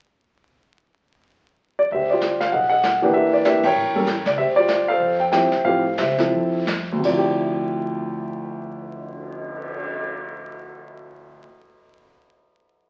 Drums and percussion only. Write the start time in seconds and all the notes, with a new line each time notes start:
1.91 brush sweep
2.21 snare, hi-hat pedal
2.41 snare
2.53 brush sweep
2.83 snare, hi-hat pedal
3.14 brush sweep
3.45 snare, hi-hat pedal
3.63 kick, ride
3.76 brush sweep
4.07 snare, hi-hat pedal
4.26 snare
4.38 brush sweep
4.68 snare, hi-hat pedal
5.01 brush sweep
5.32 snare, hi-hat pedal
5.52 snare
5.65 brush sweep
5.97 snare, hi-hat pedal
6.18 snare
6.32 brush sweep
6.67 snare, hi-hat pedal
7.03 kick, crash
7.26 cymbal swell